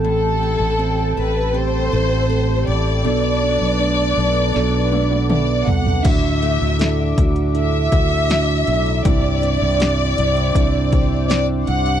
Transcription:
<<
  \new Staff \with { instrumentName = "Analog synth pad" } { \time 4/4 \key d \mixolydian \tempo 4 = 80 <a' g'' a''>1 | <b' a'' d'''>1 | <fis' d'''>1 | <c'' d'''>1 | }
  \new Staff \with { instrumentName = "Violin section" } { \time 4/4 \key d \mixolydian a'4. b'8 c''4. d''8~ | d''2. d''8 fis''8 | e''4. r8 e''2 | d''2. d''8 fis''8 | }
  \new Staff \with { instrumentName = "Steel-string acoustic guitar" } { \time 4/4 \key d \mixolydian a,8 e'8 c'8 a'8 g8 e'8 a'8 e'8 | b,8 d'8 a8 a'8 fis8 d'8 a'8 d'8 | <d fis'>8 a8 d'8 fis'8 d'8 fis'8 d'8 a8 | <c g'>8 c'8 d'8 g'8 d'8 g'8 d'8 c'8 | }
  \new Staff \with { instrumentName = "Tine electric piano" } { \time 4/4 \key d \mixolydian <c' g' a'>4 <c' g' a'>4 <c' g' a'>8 <c' g' a'>8 <c' g' a'>4 | <b d' a'>4 <b d' b'>4 <b d' a'>8 <b d' a'>8 <b d' b'>4 | <d' e' fis'>4 <d' e' a'>4 <d' e' a'>4 <d' e' fis'>4 | <c' d' e'>4 <c' d' g'>4 <c' d' e'>4 <c' d' g'>4 | }
  \new Staff \with { instrumentName = "Tine electric piano" } { \clef bass \time 4/4 \key d \mixolydian <a, e>4 r2. | <b, fis>4. r4 a''16 fis''16 e''8 d''8 | a,4. r2 r8 | g,4. r2 r8 | }
  \new Staff \with { instrumentName = "Fretless electric bass" } { \clef bass \time 4/4 \key d \mixolydian a,,8. a,,8. a,,4 a,,4 a,,8 | b,,8. b,,8. b,,8 b,,4. c,8 | d,8. d,8. d,4 d,4 b,,8 | c,8. c,8. c,8 c,4. c,8 | }
  \new DrumStaff \with { instrumentName = "Drums" } \drummode { \time 4/4 r4 r4 r4 r4 | r4 r4 sn8 tommh16 tommh16 toml8 tomfh16 tomfh16 | <cymc hh bd>8 hh8 <hh sn>8 <hh bd>16 hh16 hh8 <hh bd>8 <hh sn>8 hh16 hh16 | <hh bd>8 hh8 <hh sn>8 hh16 hh16 <hh bd>8 <hh bd>8 <hh sn>8 hh16 hh16 | }
>>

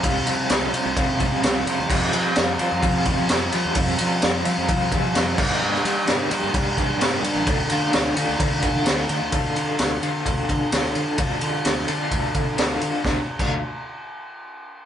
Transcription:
<<
  \new Staff \with { instrumentName = "Overdriven electric guitar" } { \time 4/4 \key d \minor \tempo 4 = 129 <c f g c' f'>8 <c f g c' f'>8 <c f g c' f'>8 <c f g c' f'>8 <c f g c' f'>8 <c f g c' f'>8 <c f g c' f'>8 <c f g c' f'>8 | <f g c' f'>8 <f g c' f'>8 <f g c' f'>8 <f g c' f'>8 <f g c' f'>8 <f g c' f'>8 <f g c' f'>8 <f g c' f'>8 | <f g c' f'>8 <f g c' f'>8 <f g c' f'>8 <f g c' f'>8 <f g c' f'>8 <f g c' f'>8 <f g c' f'>8 <g, d g bes d' g'>8 | <g, d g bes d' g'>8 <g, d g bes d' g'>8 <g, d g bes d' g'>8 <g, d g bes d' g'>8 <g, d g bes d' g'>8 <g, d g bes d' g'>8 <g, d g bes d' g'>8 <g, d g bes d' g'>8 |
<d a d' f'>8 <d a d' f'>8 <d a d' f'>8 <d a d' f'>8 <d a d' f'>8 <d a d' f'>8 <d a d' f'>8 <d a d' f'>8 | <d d' f' a'>4. <d d' f' a'>4. <d d' f' a'>4 | <d d' f' a'>4. <d d' f' a'>4. <d d' f' a'>4 | <d a d' f'>16 r8 <d a d' f'>8 r2 r8. | }
  \new Staff \with { instrumentName = "Fingered electric bass" } { \clef bass \time 4/4 \key d \minor c,8 c8 c,8 c16 c,16 c8 c,16 c16 c,8 c16 e,16 | f,8 f8 f,8 f16 f,16 f8 f,16 f16 f,8 f16 f,16 | f,8 f8 f,8 f16 f,16 f8 f,16 f16 f,8 g,16 g,16 | g,8 g8 g,8 g16 g,16 g8 g,16 g16 g,8 g16 a,,16 |
d,8 d8 d,8 d16 d,16 d8 d,16 d16 d,8 d16 d,16 | d,8 d8 d,8 d8 d,8 d16 r16 d,8 d16 r16 | d,8 d8 d,8 d8 d,8 d16 r16 d,8 d16 r16 | d,16 r8 d,8 r2 r8. | }
  \new DrumStaff \with { instrumentName = "Drums" } \drummode { \time 4/4 <bd cymr>8 cymr8 <cymr sn>8 cymr8 <bd cymr>8 <bd cymr>8 <cymr sn>8 cymr8 | <cymc bd>8 cymr8 <cymr sn>8 cymr8 <bd cymr>8 <bd cymr>8 <cymr sn>8 cymr8 | <bd cymr>8 cymr8 <cymr sn>8 cymr8 <bd cymr>8 <bd cymr>8 <cymr sn>8 <cymc bd>8 | r16 sn16 cymr8 <cymr sn>8 cymr8 <bd cymr>8 <bd cymr>8 <cymr sn>8 cymr8 |
<bd cymr>8 cymr8 <cymr sn>8 cymr8 <bd cymr>8 <bd cymr>8 <cymr sn>8 cymr8 | <bd cymr>8 cymr8 <cymr sn>8 cymr8 <bd cymr>8 <bd cymr>8 <cymr sn>8 cymr8 | <bd cymr>8 cymr8 <cymr sn>8 cymr8 <bd cymr>8 <bd cymr>8 <cymr sn>8 cymr8 | <bd sn>8. <cymc bd>16 r4 r4 r4 | }
>>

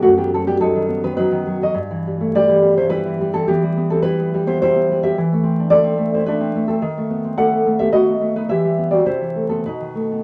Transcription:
\new Staff \with { instrumentName = "Nylon-string guitar" } { \time 3/4 \key e \minor \tempo 4 = 106 << { <a fis'>16 <b g'>16 <c' a'>16 <b g'>16 <dis' a'>8. <dis' b'>16 <dis' b'>8. <fis' dis''>16 | r4 <g' d''>8. <e' c''>16 <e' b'>8. <c' a'>16 | <b g'>8. <c' a'>16 <e' b'>8. <e' c''>16 <e' c''>8. <g' e''>16 | r4 <a' d''>8. <e' c''>16 <d' b'>8. <c' a'>16 |
r4 <a' fis''>8. <g' e''>16 <fis' dis''>8. <dis' b'>16 | <g' e''>8. <fis' d''>16 <e' c''>8. <c' a'>16 <dis' b'>4 | } \\ { fis,16 dis16 fis16 g16 fis16 dis16 b16 dis16 fis16 dis16 fis16 dis16 | g,16 e16 g16 a16 g16 e16 b16 e16 g16 e16 g16 e16 | e16 g16 b8 g16 b16 g16 b16 g16 b16 g16 b16 | e16 a16 c'16 d'16 a16 c'16 a16 c'16 a16 c'16 a8 |
dis16 a16 b16 c'16 a16 b16 a16 b16 a16 b16 a16 b16 | e16 g16 b16 c'16 c16 e16 a16 b16 b,16 dis16 a16 b16 | } >> }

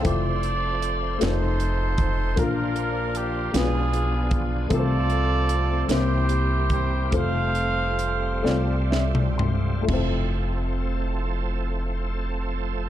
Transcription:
<<
  \new Staff \with { instrumentName = "Horn section" } { \time 6/8 \key f \major \tempo 4. = 50 << { d''4. c''4. | bes'4 g'8 gis'4 r8 | d''4. c''4 c''8 | f''2 r4 |
r2. | } \\ { a'4. <ees' a'>4. | <d' f'>4. <d' f'>4. | <f' a'>4. <e' g'>4. | <a' c''>2 r4 |
r2. | } >> }
  \new Staff \with { instrumentName = "Upright piano" } { \time 6/8 \key f \major <a e' f' c''>4 r8 <a ees' f' bes' c''>4 r8 | <bes d' f' bes'>4 r8 <gis d' f' b'>4 r8 | <a c' f' bes' c''>4 r8 <bes e' g' c''>4 r8 | <a c' f' c''>4 r8 <a c' f' d''>4 r8 |
<a e' f' c''>2. | }
  \new Staff \with { instrumentName = "Upright piano" } { \clef bass \time 6/8 \key f \major a''16 r2 r8. | bes,4. b,4. | c4. c4. | r2 e''8 c'''8 |
f,2. | }
  \new Staff \with { instrumentName = "Tonewheel organ" } { \time 6/8 \key f \major << { c''2.~ | c''4. gis'4. | a'4. g'4. | f'2. |
<f a c' a'>2. | } \\ { e''4. ees'4. | d'2. | c'2.~ | c'2. |
r2. | } >> }
  \new Staff \with { instrumentName = "Tonewheel organ" } { \time 6/8 \key f \major << { c'2. | bes4. b4. | a4. bes4. | a2. |
r2. | } \\ { f2.~ | f4. f4.~ | f4. g4.~ | g2. |
r2. | } >> }
  \new Staff \with { instrumentName = "Upright bass" } { \clef bass \time 6/8 \key f \major f,,4. f,,4. | bes,,4. b,,4. | c,4. c,4. | f,,4. c,4. |
f,,2. | }
  \new DrumStaff \with { instrumentName = "Drums" } \drummode { \time 6/8 <hh bd>8 hh8 hh8 <hh sn>8 hh8 <hh bd>8 | <hh bd>8 hh8 hh8 <hh sn>8 hh8 <hh bd>8 | <hh bd>8 hh8 hh8 <hh sn>8 hh8 <hh bd>8 | <hh bd>8 hh8 hh8 sn8 sn16 toml16 tomfh8 |
<cymc bd>4. r4. | }
>>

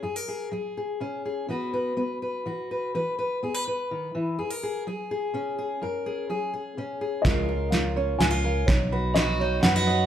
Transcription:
<<
  \new Staff \with { instrumentName = "Upright piano" } { \time 3/4 \key fis \major \tempo 4 = 125 r2. | r2. | r2. | r2. |
r2. | dis''4 eis''4 gis''4 | cis''4 dis''4 fis''4 | }
  \new Staff \with { instrumentName = "Fiddle" } { \time 3/4 \key fis \major r2. | r2. | r2. | r2. |
r2. | r2. | r4 fis'4 b'4 | }
  \new Staff \with { instrumentName = "Ukulele" } { \time 3/4 \key fis \major r2. | r2. | r2. | r2. |
r2. | eis'8 ais'8 eis'8 cis''8 eis'8 eis''8 | dis'8 b'8 dis'8 cis''8 dis'8 dis''8 | }
  \new Staff \with { instrumentName = "Steel-string acoustic guitar" } { \time 3/4 \key fis \major << { gis'16 ais'16 gis'8 gis'8 gis'8 cis'8 gis'8 | <b fis' b'>8 b'8 b'8 b'8 fis'8 b'8 | b'8 b'8 gis'16 b'16 b'4. | gis'16 ais'16 gis'8 gis'8 gis'8 cis'8 gis'8 |
ais'8 gis'8 gis'8 gis'8 cis'8 gis'8 | <gis cis' eis' ais'>8 eis'4 cis'8 dis'16 eis'16 ais'8 | r8 fis'4 dis'8 dis'16 fis'16 cis''8 | } \\ { fis,4 fis4 cis4 | e4 b4 e4 | e4 b4 dis8 e8 | fis,4 fis4 cis4 |
fis,4 fis4 cis4 | cis4 gis4 gis,4 | b,4 fis4 fis4 | } >> }
  \new Staff \with { instrumentName = "Fingered electric bass" } { \clef bass \time 3/4 \key fis \major r2. | r2. | r2. | r2. |
r2. | cis,2 cis,4 | b,,2 fis,4 | }
  \new DrumStaff \with { instrumentName = "Drums" } \drummode { \time 3/4 r4 r4 r4 | r4 r4 r4 | r4 r4 r4 | r4 r4 r4 |
r4 r4 r4 | <hh bd sn>4 <hh sn>4 <hh sn>4 | <hh bd sn>4 <hh sn>4 <hh sn>4 | }
>>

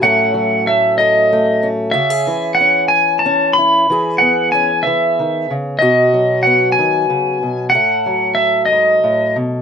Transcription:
<<
  \new Staff \with { instrumentName = "Pedal steel guitar" } { \time 6/8 \key fis \dorian \tempo 4. = 62 fis''4 e''8 dis''4 r8 | e''4 fis''8 gis''8 a''8 b''8~ | b''8 fis''8 gis''8 e''4 r8 | dis''4 fis''8 gis''4. |
fis''4 e''8 dis''4 r8 | }
  \new Staff \with { instrumentName = "Steel-string acoustic guitar" } { \clef bass \time 6/8 \key fis \dorian << { <fis a cis' a'>4 a8 a'8 a8 cis'8 | fis'16 gis'8. cis'4 cis'8 e'8 | gis'4 cis'16 r4. r16 | fis'4 b2 |
a'2. | } \\ { a,8 fis2~ fis8 | cis8 e2~ e8 | e8 b4 e8 dis8 cis8 | b,8 fis4 dis8 cis8 b,8 |
a,8 fis4 gis,8 a,8 b,8 | } >> }
>>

